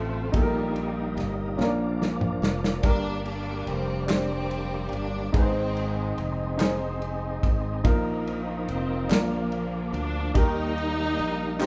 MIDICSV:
0, 0, Header, 1, 6, 480
1, 0, Start_track
1, 0, Key_signature, -3, "major"
1, 0, Tempo, 835538
1, 193, Time_signature, 6, 3, 24, 8
1, 6699, End_track
2, 0, Start_track
2, 0, Title_t, "Upright piano"
2, 0, Program_c, 0, 0
2, 0, Control_c, 0, 64, 127
2, 0, Note_on_c, 0, 60, 69
2, 0, Note_on_c, 0, 65, 62
2, 0, Note_on_c, 0, 66, 63
2, 0, Note_on_c, 0, 67, 78
2, 185, Note_on_c, 0, 63, 82
2, 194, Note_off_c, 0, 67, 0
2, 194, Note_on_c, 0, 67, 70
2, 195, Note_on_c, 0, 46, 68
2, 201, Control_c, 0, 64, 0
2, 202, Note_off_c, 0, 60, 0
2, 205, Note_off_c, 0, 66, 0
2, 205, Note_on_c, 0, 69, 71
2, 206, Note_off_c, 0, 65, 0
2, 237, Note_off_c, 0, 69, 0
2, 242, Note_on_c, 0, 70, 86
2, 298, Control_c, 0, 64, 127
2, 645, Note_off_c, 0, 63, 0
2, 650, Note_off_c, 0, 67, 0
2, 674, Note_off_c, 0, 70, 0
2, 891, Note_off_c, 0, 46, 0
2, 901, Note_on_c, 0, 61, 62
2, 909, Note_on_c, 0, 65, 73
2, 910, Note_on_c, 0, 46, 74
2, 919, Note_on_c, 0, 70, 88
2, 920, Control_c, 0, 64, 0
2, 938, Note_on_c, 0, 62, 81
2, 945, Note_off_c, 0, 61, 0
2, 1012, Control_c, 0, 64, 127
2, 1367, Note_off_c, 0, 65, 0
2, 1372, Note_off_c, 0, 70, 0
2, 1382, Note_off_c, 0, 62, 0
2, 1608, Note_off_c, 0, 46, 0
2, 1621, Note_on_c, 0, 62, 74
2, 1628, Note_on_c, 0, 67, 68
2, 1629, Note_on_c, 0, 43, 60
2, 1638, Note_on_c, 0, 70, 87
2, 1641, Control_c, 0, 64, 0
2, 1732, Control_c, 0, 64, 127
2, 2083, Note_off_c, 0, 62, 0
2, 2086, Note_off_c, 0, 67, 0
2, 2091, Note_off_c, 0, 70, 0
2, 2328, Note_off_c, 0, 43, 0
2, 2335, Note_on_c, 0, 62, 69
2, 2344, Note_on_c, 0, 67, 62
2, 2355, Note_on_c, 0, 72, 75
2, 2799, Note_off_c, 0, 62, 0
2, 2804, Note_off_c, 0, 67, 0
2, 2810, Note_off_c, 0, 72, 0
2, 3059, Note_on_c, 0, 63, 77
2, 3067, Note_on_c, 0, 44, 62
2, 3067, Note_on_c, 0, 68, 70
2, 3078, Control_c, 0, 64, 0
2, 3078, Note_on_c, 0, 71, 68
2, 3112, Note_off_c, 0, 71, 0
2, 3114, Note_on_c, 0, 72, 83
2, 3174, Control_c, 0, 64, 127
2, 3521, Note_off_c, 0, 63, 0
2, 3525, Note_off_c, 0, 68, 0
2, 3549, Note_off_c, 0, 72, 0
2, 3766, Note_off_c, 0, 44, 0
2, 3777, Note_on_c, 0, 63, 86
2, 3788, Note_on_c, 0, 68, 79
2, 3798, Note_on_c, 0, 72, 88
2, 4240, Note_off_c, 0, 63, 0
2, 4245, Note_off_c, 0, 68, 0
2, 4250, Note_off_c, 0, 72, 0
2, 4503, Note_on_c, 0, 63, 78
2, 4510, Note_on_c, 0, 65, 74
2, 4512, Note_on_c, 0, 46, 62
2, 4517, Control_c, 0, 64, 0
2, 4522, Note_on_c, 0, 70, 88
2, 4622, Control_c, 0, 64, 127
2, 4963, Note_off_c, 0, 63, 0
2, 4966, Note_off_c, 0, 65, 0
2, 4972, Note_off_c, 0, 70, 0
2, 5207, Note_off_c, 0, 46, 0
2, 5221, Note_on_c, 0, 62, 70
2, 5227, Note_on_c, 0, 65, 63
2, 5229, Note_on_c, 0, 46, 70
2, 5237, Control_c, 0, 64, 0
2, 5237, Note_on_c, 0, 70, 78
2, 5351, Control_c, 0, 64, 127
2, 5681, Note_off_c, 0, 62, 0
2, 5684, Note_off_c, 0, 65, 0
2, 5689, Note_off_c, 0, 70, 0
2, 5926, Note_off_c, 0, 46, 0
2, 5941, Note_on_c, 0, 63, 79
2, 5950, Note_on_c, 0, 67, 73
2, 5952, Note_on_c, 0, 51, 65
2, 5956, Control_c, 0, 64, 0
2, 5960, Note_on_c, 0, 70, 89
2, 6050, Control_c, 0, 64, 127
2, 6401, Note_off_c, 0, 63, 0
2, 6406, Note_off_c, 0, 67, 0
2, 6411, Note_off_c, 0, 70, 0
2, 6647, Note_off_c, 0, 51, 0
2, 6658, Note_on_c, 0, 63, 86
2, 6668, Note_on_c, 0, 67, 77
2, 6675, Note_on_c, 0, 72, 87
2, 6699, Note_off_c, 0, 63, 0
2, 6699, Note_off_c, 0, 67, 0
2, 6699, Note_off_c, 0, 72, 0
2, 6699, End_track
3, 0, Start_track
3, 0, Title_t, "Tonewheel organ"
3, 0, Program_c, 1, 16
3, 0, Note_on_c, 1, 57, 69
3, 0, Note_on_c, 1, 60, 67
3, 0, Note_on_c, 1, 65, 76
3, 170, Note_off_c, 1, 57, 0
3, 170, Note_off_c, 1, 60, 0
3, 170, Note_off_c, 1, 65, 0
3, 196, Note_on_c, 1, 58, 66
3, 198, Note_on_c, 1, 55, 65
3, 199, Note_on_c, 1, 63, 76
3, 903, Note_off_c, 1, 58, 0
3, 909, Note_on_c, 1, 53, 78
3, 910, Note_on_c, 1, 58, 71
3, 911, Note_on_c, 1, 62, 86
3, 915, Note_off_c, 1, 55, 0
3, 916, Note_off_c, 1, 63, 0
3, 1621, Note_off_c, 1, 58, 0
3, 1622, Note_off_c, 1, 62, 0
3, 1628, Note_on_c, 1, 58, 61
3, 1629, Note_on_c, 1, 62, 70
3, 1631, Note_off_c, 1, 53, 0
3, 1632, Note_on_c, 1, 55, 63
3, 3046, Note_off_c, 1, 58, 0
3, 3047, Note_off_c, 1, 62, 0
3, 3048, Note_off_c, 1, 55, 0
3, 3069, Note_on_c, 1, 56, 65
3, 3069, Note_on_c, 1, 60, 61
3, 3070, Note_on_c, 1, 62, 61
3, 3106, Note_on_c, 1, 63, 75
3, 3108, Note_off_c, 1, 62, 0
3, 4486, Note_off_c, 1, 56, 0
3, 4486, Note_off_c, 1, 60, 0
3, 4503, Note_off_c, 1, 63, 0
3, 4510, Note_on_c, 1, 58, 61
3, 4510, Note_on_c, 1, 63, 77
3, 4512, Note_on_c, 1, 53, 69
3, 5228, Note_off_c, 1, 53, 0
3, 5229, Note_off_c, 1, 63, 0
3, 5230, Note_off_c, 1, 58, 0
3, 5235, Note_on_c, 1, 53, 66
3, 5237, Note_on_c, 1, 62, 76
3, 5241, Note_on_c, 1, 58, 64
3, 5936, Note_off_c, 1, 58, 0
3, 5942, Note_on_c, 1, 55, 67
3, 5942, Note_on_c, 1, 63, 76
3, 5943, Note_on_c, 1, 58, 60
3, 5952, Note_off_c, 1, 53, 0
3, 5953, Note_off_c, 1, 62, 0
3, 6699, Note_off_c, 1, 55, 0
3, 6699, Note_off_c, 1, 58, 0
3, 6699, Note_off_c, 1, 63, 0
3, 6699, End_track
4, 0, Start_track
4, 0, Title_t, "String section"
4, 0, Program_c, 2, 48
4, 0, Note_on_c, 2, 53, 82
4, 0, Note_on_c, 2, 57, 88
4, 177, Note_off_c, 2, 53, 0
4, 201, Note_off_c, 2, 57, 0
4, 206, Note_on_c, 2, 46, 67
4, 207, Note_on_c, 2, 51, 62
4, 209, Note_on_c, 2, 55, 91
4, 741, Note_off_c, 2, 55, 0
4, 897, Note_off_c, 2, 46, 0
4, 897, Note_off_c, 2, 51, 0
4, 1636, Note_on_c, 2, 62, 111
4, 1639, Note_on_c, 2, 55, 84
4, 1639, Note_on_c, 2, 58, 89
4, 1858, Note_off_c, 2, 62, 0
4, 1874, Note_on_c, 2, 62, 98
4, 2096, Note_off_c, 2, 62, 0
4, 2115, Note_on_c, 2, 60, 92
4, 2332, Note_off_c, 2, 55, 0
4, 2333, Note_off_c, 2, 58, 0
4, 2346, Note_off_c, 2, 60, 0
4, 2352, Note_on_c, 2, 60, 100
4, 2363, Note_on_c, 2, 55, 74
4, 2809, Note_off_c, 2, 60, 0
4, 2828, Note_on_c, 2, 62, 98
4, 3054, Note_off_c, 2, 55, 0
4, 3070, Note_off_c, 2, 62, 0
4, 3075, Note_on_c, 2, 60, 98
4, 3082, Note_on_c, 2, 51, 68
4, 3082, Note_on_c, 2, 56, 68
4, 3590, Note_off_c, 2, 60, 0
4, 3773, Note_off_c, 2, 51, 0
4, 3773, Note_off_c, 2, 56, 0
4, 4518, Note_on_c, 2, 53, 69
4, 4519, Note_on_c, 2, 51, 73
4, 4524, Note_on_c, 2, 58, 92
4, 4974, Note_off_c, 2, 58, 0
4, 4995, Note_on_c, 2, 60, 86
4, 5211, Note_off_c, 2, 51, 0
4, 5211, Note_off_c, 2, 53, 0
4, 5232, Note_off_c, 2, 60, 0
4, 5236, Note_on_c, 2, 58, 93
4, 5237, Note_on_c, 2, 50, 70
4, 5238, Note_on_c, 2, 53, 71
4, 5711, Note_on_c, 2, 62, 105
4, 5712, Note_off_c, 2, 58, 0
4, 5930, Note_off_c, 2, 50, 0
4, 5930, Note_off_c, 2, 53, 0
4, 5950, Note_off_c, 2, 62, 0
4, 5951, Note_on_c, 2, 63, 120
4, 5953, Note_on_c, 2, 55, 80
4, 5953, Note_on_c, 2, 58, 85
4, 6699, Note_off_c, 2, 55, 0
4, 6699, Note_off_c, 2, 58, 0
4, 6699, Note_off_c, 2, 63, 0
4, 6699, End_track
5, 0, Start_track
5, 0, Title_t, "Fingered electric bass"
5, 0, Program_c, 3, 33
5, 0, Note_on_c, 3, 33, 85
5, 173, Note_off_c, 3, 33, 0
5, 195, Note_on_c, 3, 34, 97
5, 671, Note_on_c, 3, 31, 88
5, 680, Note_off_c, 3, 34, 0
5, 893, Note_off_c, 3, 31, 0
5, 912, Note_on_c, 3, 34, 109
5, 1369, Note_off_c, 3, 34, 0
5, 1391, Note_on_c, 3, 29, 97
5, 1613, Note_off_c, 3, 29, 0
5, 1629, Note_on_c, 3, 31, 96
5, 2087, Note_off_c, 3, 31, 0
5, 2108, Note_on_c, 3, 29, 93
5, 2807, Note_off_c, 3, 29, 0
5, 2827, Note_on_c, 3, 31, 94
5, 3050, Note_off_c, 3, 31, 0
5, 3067, Note_on_c, 3, 32, 96
5, 3526, Note_off_c, 3, 32, 0
5, 3548, Note_on_c, 3, 29, 83
5, 4246, Note_off_c, 3, 29, 0
5, 4270, Note_on_c, 3, 32, 96
5, 4491, Note_off_c, 3, 32, 0
5, 4507, Note_on_c, 3, 34, 105
5, 4965, Note_off_c, 3, 34, 0
5, 4988, Note_on_c, 3, 29, 94
5, 5210, Note_off_c, 3, 29, 0
5, 5227, Note_on_c, 3, 34, 100
5, 5685, Note_off_c, 3, 34, 0
5, 5706, Note_on_c, 3, 38, 91
5, 5928, Note_off_c, 3, 38, 0
5, 5948, Note_on_c, 3, 39, 101
5, 6405, Note_off_c, 3, 39, 0
5, 6430, Note_on_c, 3, 34, 82
5, 6699, Note_off_c, 3, 34, 0
5, 6699, End_track
6, 0, Start_track
6, 0, Title_t, "Drums"
6, 193, Note_on_c, 9, 51, 75
6, 194, Note_on_c, 9, 36, 111
6, 250, Note_off_c, 9, 51, 0
6, 252, Note_off_c, 9, 36, 0
6, 435, Note_on_c, 9, 51, 39
6, 493, Note_off_c, 9, 51, 0
6, 675, Note_on_c, 9, 51, 42
6, 684, Note_on_c, 9, 38, 30
6, 732, Note_off_c, 9, 51, 0
6, 741, Note_off_c, 9, 38, 0
6, 921, Note_on_c, 9, 38, 56
6, 979, Note_off_c, 9, 38, 0
6, 1160, Note_on_c, 9, 38, 71
6, 1218, Note_off_c, 9, 38, 0
6, 1271, Note_on_c, 9, 45, 78
6, 1328, Note_off_c, 9, 45, 0
6, 1398, Note_on_c, 9, 38, 96
6, 1456, Note_off_c, 9, 38, 0
6, 1519, Note_on_c, 9, 38, 89
6, 1576, Note_off_c, 9, 38, 0
6, 1627, Note_on_c, 9, 51, 75
6, 1629, Note_on_c, 9, 36, 108
6, 1684, Note_off_c, 9, 51, 0
6, 1687, Note_off_c, 9, 36, 0
6, 1870, Note_on_c, 9, 51, 39
6, 1927, Note_off_c, 9, 51, 0
6, 2109, Note_on_c, 9, 51, 42
6, 2166, Note_off_c, 9, 51, 0
6, 2350, Note_on_c, 9, 39, 93
6, 2351, Note_on_c, 9, 51, 72
6, 2358, Note_on_c, 9, 38, 112
6, 2407, Note_off_c, 9, 39, 0
6, 2408, Note_off_c, 9, 51, 0
6, 2416, Note_off_c, 9, 38, 0
6, 2590, Note_on_c, 9, 51, 40
6, 2648, Note_off_c, 9, 51, 0
6, 2832, Note_on_c, 9, 51, 39
6, 2889, Note_off_c, 9, 51, 0
6, 3068, Note_on_c, 9, 36, 117
6, 3068, Note_on_c, 9, 51, 69
6, 3125, Note_off_c, 9, 36, 0
6, 3125, Note_off_c, 9, 51, 0
6, 3313, Note_on_c, 9, 51, 44
6, 3370, Note_off_c, 9, 51, 0
6, 3550, Note_on_c, 9, 51, 42
6, 3607, Note_off_c, 9, 51, 0
6, 3790, Note_on_c, 9, 39, 94
6, 3792, Note_on_c, 9, 51, 74
6, 3800, Note_on_c, 9, 38, 113
6, 3848, Note_off_c, 9, 39, 0
6, 3849, Note_off_c, 9, 51, 0
6, 3857, Note_off_c, 9, 38, 0
6, 4031, Note_on_c, 9, 51, 40
6, 4089, Note_off_c, 9, 51, 0
6, 4270, Note_on_c, 9, 36, 98
6, 4272, Note_on_c, 9, 51, 41
6, 4328, Note_off_c, 9, 36, 0
6, 4329, Note_off_c, 9, 51, 0
6, 4507, Note_on_c, 9, 51, 68
6, 4508, Note_on_c, 9, 36, 111
6, 4565, Note_off_c, 9, 51, 0
6, 4566, Note_off_c, 9, 36, 0
6, 4753, Note_on_c, 9, 51, 42
6, 4811, Note_off_c, 9, 51, 0
6, 4989, Note_on_c, 9, 51, 45
6, 5047, Note_off_c, 9, 51, 0
6, 5229, Note_on_c, 9, 39, 86
6, 5231, Note_on_c, 9, 51, 77
6, 5238, Note_on_c, 9, 38, 113
6, 5287, Note_off_c, 9, 39, 0
6, 5288, Note_off_c, 9, 51, 0
6, 5296, Note_off_c, 9, 38, 0
6, 5468, Note_on_c, 9, 51, 39
6, 5526, Note_off_c, 9, 51, 0
6, 5710, Note_on_c, 9, 51, 38
6, 5767, Note_off_c, 9, 51, 0
6, 5946, Note_on_c, 9, 51, 71
6, 5947, Note_on_c, 9, 36, 112
6, 6004, Note_off_c, 9, 51, 0
6, 6005, Note_off_c, 9, 36, 0
6, 6191, Note_on_c, 9, 51, 41
6, 6249, Note_off_c, 9, 51, 0
6, 6428, Note_on_c, 9, 51, 41
6, 6485, Note_off_c, 9, 51, 0
6, 6666, Note_on_c, 9, 39, 88
6, 6676, Note_on_c, 9, 38, 61
6, 6699, Note_off_c, 9, 38, 0
6, 6699, Note_off_c, 9, 39, 0
6, 6699, End_track
0, 0, End_of_file